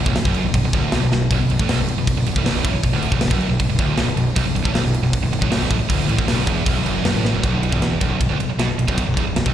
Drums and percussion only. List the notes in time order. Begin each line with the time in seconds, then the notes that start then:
0.06 kick
0.16 snare, crash
0.25 kick
0.34 crash
0.54 kick, crash
0.73 kick, crash
0.92 snare, crash
1.12 snare
1.31 kick, crash
1.50 crash
1.59 kick
1.69 snare, crash
1.88 crash
2.07 kick, crash
2.26 crash
2.36 kick
2.46 snare, crash
2.65 kick, crash
2.83 kick, crash
3.02 crash
3.12 kick
3.21 snare, crash
3.31 kick
3.41 crash
3.60 kick, crash
3.79 kick, crash
3.97 snare, crash
4.17 crash
4.36 kick, crash
4.56 crash
4.65 kick
4.75 snare, crash
4.94 crash
5.13 kick, crash
5.33 crash
5.42 kick
5.52 snare, crash
5.71 kick, crash
5.90 kick, crash
6.09 crash
6.19 kick
6.28 snare, crash
6.47 kick, crash
6.66 kick, crash
6.86 crash
7.05 snare, crash
7.25 snare
7.44 kick, ride
7.63 ride
7.72 kick
7.82 snare, ride
8.01 kick, ride
8.21 kick, ride
8.40 ride
8.59 snare, ride
8.79 ride
8.88 kick
8.98 kick, ride
9.17 kick, ride
9.36 snare, ride
9.46 kick